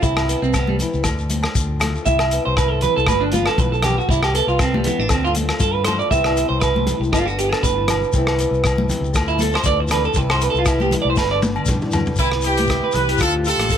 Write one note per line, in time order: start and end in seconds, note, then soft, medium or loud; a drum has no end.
0.02 0.34 C2 loud
0.02 0.79 C3 medium
0.02 0.54 C4 medium
0.02 0.39 E4 medium
0.02 kick medium
0.02 shekere loud
0.17 cross-stick medium
0.17 low agogo medium
0.17 shekere soft
0.29 1.02 B3 medium
0.29 closed hi-hat medium
0.29 shekere medium
0.42 0.83 C2 medium
0.42 0.54 C4 medium
0.42 shekere soft
0.54 0.68 B3 medium
0.54 1.03 C4 medium
0.54 kick medium
0.54 cross-stick medium
0.54 low agogo medium
0.54 shekere loud
0.67 0.75 G3 medium
0.67 high conga medium
0.79 1.03 E3 medium
0.79 1.06 E4 medium
0.79 closed hi-hat medium
0.79 low conga medium
0.79 shekere medium
0.93 1.03 C#2 medium
0.93 shekere soft
1.04 1.45 D2 loud
1.04 2.07 D3 medium
1.04 kick loud
1.04 cross-stick medium
1.04 low agogo medium
1.04 shekere medium
1.08 muted steel-string acoustic guitar stroke medium
1.19 shekere soft
1.30 2.05 C4 medium
1.30 closed hi-hat medium
1.30 high conga medium
1.30 shekere medium
1.43 cross-stick medium
1.43 low agogo medium
1.43 shekere soft
1.55 1.96 D2 medium
1.55 1.82 F4 medium
1.55 kick medium
1.55 shekere loud
1.80 2.04 A3 medium
1.80 2.05 F4 medium
1.80 cross-stick medium
1.80 closed hi-hat medium
1.80 low conga medium
1.80 low agogo medium
1.80 shekere medium
1.96 shekere soft
2.06 2.37 C2 medium
2.06 2.82 C3 medium
2.06 2.82 E4 medium
2.06 2.42 E5 medium
2.06 kick medium
2.06 shekere loud
2.19 cross-stick medium
2.19 low agogo medium
2.19 shekere soft
2.31 3.05 B3 medium
2.31 closed hi-hat medium
2.31 shekere medium
2.45 2.86 C2 medium
2.45 2.57 C5 medium
2.57 3.05 C4 medium
2.57 2.71 B4 medium
2.57 kick medium
2.57 cross-stick medium
2.57 low agogo medium
2.57 shekere medium
2.71 2.82 A4 medium
2.81 3.05 E3 medium
2.81 3.08 E4 medium
2.81 2.96 B4 loud
2.81 closed hi-hat soft
2.81 low conga medium
2.81 shekere medium
2.96 3.06 C2 medium
2.96 3.08 A4 medium
2.96 shekere soft
3.07 3.48 G1 medium
3.07 4.06 G2 medium
3.07 4.07 F4 medium
3.07 3.21 B4 medium
3.07 kick loud
3.07 cross-stick medium
3.07 high conga medium
3.07 low agogo medium
3.07 shekere medium
3.21 3.33 D4 medium
3.32 4.06 B3 medium
3.32 3.46 F4 medium
3.32 closed hi-hat medium
3.32 high conga medium
3.32 low conga medium
3.32 shekere medium
3.46 3.59 A4 medium
3.46 cross-stick medium
3.46 low agogo medium
3.46 shekere soft
3.58 3.98 B1 medium
3.58 3.82 A2 medium
3.58 3.72 B4 loud
3.58 kick medium
3.58 low conga medium
3.58 shekere medium
3.72 3.83 A4 medium
3.72 shekere soft
3.82 4.07 B2 medium
3.82 3.97 G4 medium
3.82 cross-stick medium
3.82 closed hi-hat medium
3.82 low conga medium
3.82 low agogo medium
3.82 shekere medium
3.98 4.09 F#4 medium
3.98 shekere soft
4.08 4.40 C2 loud
4.08 4.60 C4 medium
4.08 4.22 E4 medium
4.08 muted steel-string acoustic guitar stroke medium
4.08 kick loud
4.08 shekere medium
4.23 4.34 G4 medium
4.23 cross-stick medium
4.23 low agogo medium
4.23 shekere soft
4.34 5.07 B3 medium
4.34 4.48 A4 loud
4.34 closed hi-hat medium
4.34 shekere medium
4.47 4.88 C2 medium
4.47 4.60 F4 medium
4.47 shekere soft
4.59 4.73 C4 medium
4.59 kick medium
4.59 cross-stick medium
4.59 low agogo medium
4.59 shekere medium
4.74 4.85 G3 medium
4.74 high conga medium
4.84 5.07 E3 medium
4.84 5.00 B3 medium
4.84 5.10 E4 medium
4.84 closed hi-hat medium
4.84 low conga medium
4.84 shekere medium
4.99 5.08 A1 medium
4.99 5.11 D4 medium
4.99 shekere soft
5.08 5.50 D2 loud
5.08 6.11 D3 medium
5.08 5.84 A3 medium
5.08 5.35 C4 medium
5.08 5.24 C4 medium
5.08 5.58 F4 medium
5.08 kick medium
5.08 cross-stick medium
5.08 low agogo medium
5.08 shekere medium
5.25 5.31 F4 medium
5.25 shekere soft
5.35 6.09 C4 medium
5.35 closed hi-hat medium
5.35 high conga medium
5.35 shekere medium
5.49 cross-stick medium
5.49 low agogo medium
5.49 shekere soft
5.60 6.01 G2 medium
5.60 5.85 F4 medium
5.60 5.74 A4 medium
5.60 kick medium
5.60 shekere loud
5.74 5.84 B4 medium
5.84 6.09 A3 medium
5.84 6.09 F4 medium
5.84 5.99 C5 loud
5.84 cross-stick medium
5.84 closed hi-hat medium
5.84 low conga medium
5.84 low agogo medium
5.84 shekere medium
5.99 6.10 D5 medium
5.99 shekere soft
6.11 6.42 C2 medium
6.11 6.61 C3 medium
6.11 7.10 E3 medium
6.11 6.37 B3 medium
6.11 7.11 C4 medium
6.11 7.14 E4 medium
6.11 6.48 E5 medium
6.11 kick medium
6.11 shekere medium
6.24 cross-stick medium
6.24 low agogo medium
6.24 shekere soft
6.37 7.11 B3 medium
6.37 closed hi-hat medium
6.37 shekere medium
6.49 6.90 C2 medium
6.49 6.60 C5 medium
6.60 6.86 B2 medium
6.60 6.98 B4 medium
6.60 kick medium
6.60 cross-stick medium
6.60 low agogo medium
6.60 shekere medium
6.76 high conga medium
6.86 7.12 A2 medium
6.86 closed hi-hat soft
6.86 low conga medium
6.86 shekere medium
7.00 7.10 C2 medium
7.00 muted clean electric guitar stroke medium
7.00 shekere soft
7.12 7.53 G1 loud
7.12 8.11 G2 medium
7.12 8.14 D3 medium
7.12 7.38 B3 medium
7.12 8.12 D4 medium
7.12 7.26 F4 medium
7.12 kick medium
7.12 cross-stick medium
7.12 low agogo medium
7.12 shekere medium
7.26 7.37 F#4 medium
7.26 shekere soft
7.39 8.12 B3 medium
7.39 7.51 G4 medium
7.39 closed hi-hat medium
7.39 shekere medium
7.51 7.63 A4 medium
7.51 cross-stick medium
7.51 low agogo medium
7.51 shekere soft
7.63 8.03 G1 loud
7.63 7.87 A2 medium
7.63 8.60 B4 medium
7.63 kick medium
7.63 shekere loud
7.87 8.13 B2 medium
7.87 cross-stick medium
7.87 closed hi-hat medium
7.87 low conga medium
7.87 low agogo medium
7.87 shekere medium
8.03 shekere soft
8.13 8.45 C2 loud
8.13 8.63 C3 medium
8.13 9.13 E3 medium
8.13 8.39 B3 medium
8.13 9.13 C4 medium
8.13 kick medium
8.13 shekere loud
8.18 9.14 E4 medium
8.27 cross-stick medium
8.27 low agogo medium
8.39 9.13 B3 medium
8.39 closed hi-hat medium
8.39 shekere medium
8.51 8.92 C2 medium
8.51 shekere soft
8.63 8.89 B2 medium
8.63 kick medium
8.63 cross-stick medium
8.63 low agogo medium
8.63 shekere loud
8.78 high conga medium
8.89 9.15 C3 medium
8.89 closed hi-hat medium
8.89 low conga medium
8.89 shekere medium
9.01 9.11 C#2 medium
9.01 shekere soft
9.13 9.56 D2 loud
9.13 9.65 D3 medium
9.13 10.13 F4 medium
9.13 kick medium
9.13 cross-stick medium
9.13 low agogo medium
9.13 shekere medium
9.28 9.40 E4 medium
9.28 shekere soft
9.39 10.15 C4 medium
9.39 9.54 A4 medium
9.39 closed hi-hat medium
9.39 high conga medium
9.39 shekere medium
9.51 9.65 C5 medium
9.51 low agogo medium
9.51 shekere soft
9.55 cross-stick medium
9.64 10.06 D2 loud
9.64 9.91 E3 medium
9.64 9.79 D5 loud
9.64 kick medium
9.64 shekere loud
9.80 muted clean electric guitar stroke medium
9.88 10.04 B4 medium
9.88 cross-stick medium
9.88 closed hi-hat medium
9.88 low conga medium
9.88 low agogo medium
9.88 shekere medium
9.93 10.17 D3 medium
10.03 10.17 A4 medium
10.03 shekere soft
10.14 10.47 C2 loud
10.14 10.66 C3 medium
10.14 11.18 E4 medium
10.14 10.30 B4 loud
10.14 kick medium
10.14 shekere medium
10.30 10.42 C5 medium
10.30 cross-stick medium
10.30 low agogo medium
10.30 shekere soft
10.41 11.15 B3 medium
10.41 10.50 B4 loud
10.41 closed hi-hat medium
10.41 shekere medium
10.50 10.58 A4 medium
10.54 10.95 C2 medium
10.54 shekere soft
10.59 10.68 F4 medium
10.66 10.92 B2 medium
10.66 10.81 E4 medium
10.66 kick medium
10.66 cross-stick medium
10.66 low agogo medium
10.66 shekere loud
10.80 10.92 G4 medium
10.80 high conga medium
10.80 shekere soft
10.91 11.19 A2 medium
10.91 muted clean electric guitar stroke loud
10.91 closed hi-hat soft
10.91 low conga medium
10.91 shekere medium
11.02 11.15 C2 medium
11.02 11.09 D5 medium
11.10 11.18 C5 medium
11.17 11.58 G1 loud
11.17 12.17 G2 medium
11.17 12.20 D3 medium
11.17 11.43 B3 medium
11.17 12.18 D4 medium
11.17 11.31 B4 medium
11.17 muted steel-string acoustic guitar stroke medium
11.17 kick loud
11.17 snare medium
11.17 low agogo medium
11.17 shekere medium
11.31 11.38 D5 medium
11.42 12.17 B3 medium
11.42 high tom medium
11.42 high conga medium
11.42 shekere medium
11.56 low agogo medium
11.66 12.08 G2 loud
11.66 11.94 A2 medium
11.66 kick medium
11.66 mid tom medium
11.66 low conga medium
11.66 shekere loud
11.81 mid tom medium
11.81 shekere soft
11.91 12.19 B2 medium
11.91 floor tom medium
11.91 low conga medium
11.91 low agogo medium
11.91 shekere medium
12.06 floor tom medium
12.06 shekere soft
12.16 12.79 C2 loud
12.16 12.31 C4 medium
12.16 12.30 E4 medium
12.16 12.43 B4 medium
12.16 kick medium
12.16 closed hi-hat soft
12.16 shekere medium
12.20 12.96 C3 medium
12.20 12.95 E3 medium
12.20 13.19 B3 medium
12.20 12.45 C4 medium
12.32 cross-stick medium
12.41 12.92 E4 medium
12.41 12.91 G4 loud
12.41 closed hi-hat soft
12.41 shekere medium
12.46 13.19 C4 medium
12.46 12.69 G4 medium
12.57 closed hi-hat medium
12.57 high conga medium
12.67 13.21 E4 medium
12.67 muted clean electric guitar stroke medium
12.67 kick medium
12.67 cross-stick medium
12.67 closed hi-hat soft
12.67 shekere medium
12.84 13.08 B4 medium
12.92 13.15 C2 medium
12.92 13.21 G4 medium
12.92 13.20 B4 loud
12.92 closed hi-hat soft
12.92 shekere medium
12.96 13.18 E3 medium
12.96 low conga medium
13.09 13.20 G4 medium
13.09 closed hi-hat medium
13.18 13.52 D2 loud
13.18 13.44 F4 medium
13.18 13.33 A4 loud
13.18 kick medium
13.18 cross-stick medium
13.18 closed hi-hat medium
13.18 shekere medium
13.22 13.72 D3 medium
13.22 13.78 A3 medium
13.22 13.78 C4 medium
13.22 13.33 F4 medium
13.22 13.47 F4 medium
13.45 13.78 F4 medium
13.45 13.70 G4 medium
13.45 13.78 A4 loud
13.45 muted steel-string acoustic guitar stroke medium
13.45 closed hi-hat medium
13.45 shekere medium
13.58 13.78 A1 medium
13.58 cross-stick medium
13.58 closed hi-hat medium
13.58 high conga medium
13.69 13.78 A4 medium
13.69 kick medium
13.69 closed hi-hat soft
13.69 shekere medium
13.74 13.78 E3 medium